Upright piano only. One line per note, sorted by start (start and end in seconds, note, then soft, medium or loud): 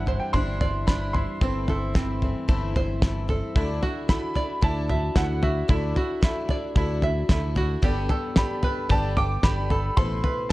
0.00 0.18 F#5 medium
0.20 0.34 G5 medium
0.33 0.89 C6 loud
0.87 1.15 B5 loud
1.13 2.98 C6 medium
4.09 4.64 B5 medium
4.63 5.18 A5 loud
5.17 5.44 F#5 medium
5.43 6.99 E5 medium
8.37 8.87 B5 medium
8.91 9.16 A5 medium
9.17 9.42 D6 loud
9.44 9.99 B5 loud
9.97 10.52 C6 loud